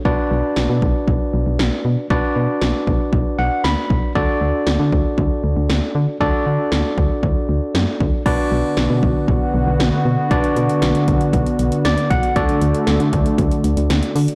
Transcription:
<<
  \new Staff \with { instrumentName = "Tine electric piano" } { \time 4/4 \key b \minor \tempo 4 = 117 << { r1 | r2 r8 fis''8 b''4 | r1 | r1 |
r1 | r2. d''8 fis''8 | r1 | } \\ { <d' fis' b' d''>1 | <d' fis' b' d''>1 | <d' fis' a' d''>1 | <d' fis' a' d''>1 |
<d' fis' b' d''>1 | <d' fis' b' d''>1 | <d' fis' a' d''>1 | } >> }
  \new Staff \with { instrumentName = "Analog synth pad" } { \time 4/4 \key b \minor << { r1 | r1 | r1 | r1 |
fis'1~ | fis'1~ | fis'1 | } \\ { r1 | r1 | r1 | r1 |
<d b>1~ | <d b>1 | <d a>1 | } >> }
  \new Staff \with { instrumentName = "FM bass" } { \clef bass \time 4/4 \key b \minor b,,16 r16 b,,16 r16 b,,16 b,16 b,,16 r16 b,,16 r16 b,,16 b,,16 b,,16 r16 b,16 r16 | b,,16 r16 b,16 r16 b,,16 r16 b,,16 r16 b,,16 r16 b,,16 r16 d,16 r16 b,,16 r16 | d,16 r16 d,16 r16 d,16 d16 d,16 r16 d,16 r16 d,16 d,16 d,16 r16 d16 r16 | d,16 r16 d16 r16 d,16 r16 d,16 r16 d,16 r16 d,16 r16 fis,16 r16 d,16 r16 |
b,,16 r16 b,,16 r16 b,,16 b,16 b,,16 r16 b,,16 r16 b,,16 b,,16 b,,16 r16 b,16 r16 | b,,16 r16 b,16 r16 b,,16 r16 b,,16 r16 b,,16 r16 b,,16 r16 d,16 r16 b,,16 r16 | d,16 r16 d,16 r16 d,16 d16 d,16 r16 d,16 r16 d,16 d,16 d,16 r16 d16 r16 | }
  \new DrumStaff \with { instrumentName = "Drums" } \drummode { \time 4/4 bd4 sn8 bd8 bd4 sn4 | bd4 sn8 bd8 bd4 sn8 bd8 | bd4 sn8 bd8 bd4 sn4 | bd4 sn8 bd8 bd4 sn8 bd8 |
<cymc bd>4 sn8 bd8 bd4 sn4 | <hh bd>16 hh16 hh16 hh16 <hh sn>16 hh16 <hh bd>16 hh16 <hh bd>16 hh16 hh16 hh16 <hh sn>16 hh16 <hh bd>16 hh16 | <hh bd>16 hh16 hh16 hh16 <hh sn>16 hh16 <hh bd>16 hh16 <hh bd>16 hh16 hh16 hh16 <hh sn>16 hh16 hho16 hh16 | }
>>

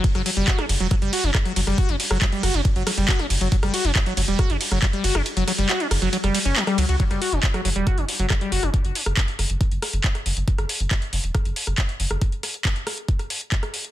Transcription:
<<
  \new Staff \with { instrumentName = "Acid bass" } { \clef bass \time 4/4 \tempo 4 = 138 r16 fis16 fis16 g16 fis'16 cis'16 r16 fis16 fis16 g16 fis'16 cis'16 r16 fis16 fis16 g16 | fis'16 cis'16 r16 fis16 fis16 g16 fis'16 cis'16 r16 fis16 fis16 g16 fis'16 cis'16 r16 fis16 | fis16 g16 fis'16 cis'16 r16 fis16 fis16 g16 fis'16 cis'16 r16 fis16 fis16 g16 fis'16 cis'16 | r16 fis16 fis16 g16 fis'16 cis'16 r16 fis16 fis16 g16 g16 cis'16 fis16 g16 fis16 fis'16 |
fis16 g16 fis'16 cis'16 r16 fis16 fis16 g16 fis'16 cis'16 r16 fis16 fis16 g16 fis'16 cis'16 | r1 | r1 | r1 | }
  \new Staff \with { instrumentName = "Analog synth bass" } { \clef bass \time 4/4 r16 fis,,16 r16 fis,,16 r8 fis,,16 e,,16 r16 fis,,16 r16 fis,,16 r8 fis,,16 fis,,16 | r16 fis,,16 r16 fis,,16 r8 fis,,16 fis,,16 r16 fis,,16 r16 fis,,16 r8 fis,,16 fis,,16 | r16 fis,,16 r16 fis,,16 r8 fis,,16 e,,16 r16 fis,,16 r16 fis,,16 r8 fis,,16 fis,,16 | r16 fis,,16 r16 fis,,16 r8 fis,,16 fis,,16 r16 fis,,16 r16 fis,,16 r8 cis,16 cis,16 |
r16 fis,,16 r16 fis,,16 r8 fis,,16 e,,16 r16 fis,,16 r16 fis,,16 r8 fis,,16 fis,,16 | r16 fis,,16 r16 fis,,16 r8 fis,,16 fis,,16 r16 fis,,16 r16 fis,,16 r8 fis,,16 fis,,16 | r16 fis,,16 r16 fis,,16 r8 fis,,16 e,,16 r16 fis,,16 r16 fis,,16 r8 fis,,16 fis,,16 | r1 | }
  \new DrumStaff \with { instrumentName = "Drums" } \drummode { \time 4/4 <hh bd cymr>16 <hh ss>16 <hho cymr>16 hh16 <hc hh bd cymr>16 <hh ss>16 <hho cymr>16 hh16 <hh bd cymr ss>16 hh16 <hho cymr>16 hh16 <hc hh bd ss>16 hh16 <hho cymr>16 <hh ss>16 | <hh bd cymr>16 hh16 <hho cymr>16 <hh ss>16 <hc hh bd cymr>16 hh16 <hho cymr ss>16 hh16 <hh bd cymr>16 hh16 <hho cymr ss>16 hh16 <hc hh bd cymr>16 <hh ss>16 <hho cymr>16 hh16 | <hh bd cymr>16 <hh ss>16 <hho cymr>16 hh16 <hc hh bd cymr ss>16 hh16 <hho cymr>16 hh16 <hh bd cymr ss>16 hh16 <hho cymr>16 <hh ss>16 <hc hh bd cymr>16 hh16 <hho cymr>16 <hh ss>16 | <hh cymr>16 hh16 <hho cymr ss>16 hh16 <hc hh cymr>16 hh16 <hho cymr ss>16 hh16 <hh cymr>16 <hh ss>16 <hho cymr>16 hh16 <hc hh cymr>16 <hh ss>16 <hho cymr>16 hh16 |
<hh bd>16 <hh ss>16 hho16 hh16 <hc hh bd>16 <hh ss>16 hho16 hh16 <hh bd ss>16 hh16 hho16 hh16 <hc hh bd ss>16 hh16 hho16 <hh ss>16 | <hh bd>16 hh16 hho16 <hh ss>16 <hc hh bd>16 hh16 <hho ss>16 hh16 <hh bd>16 hh16 <hho ss>16 hh16 <hc hh bd>16 <hh ss>16 hho16 hh16 | <hh bd>16 <hh ss>16 hho16 hh16 <hc hh bd ss>16 hh16 hho16 hh16 <hh bd ss>16 hh16 hho16 <hh ss>16 <hc hh bd>16 hh16 hho16 <hh ss>16 | <hh bd>16 hh16 <hho ss>16 hh16 <hc hh bd>16 hh16 <hho ss>16 hh16 <hh bd>16 <hh ss>16 hho16 hh16 <hc hh bd>16 <hh ss>16 hho16 hh16 | }
>>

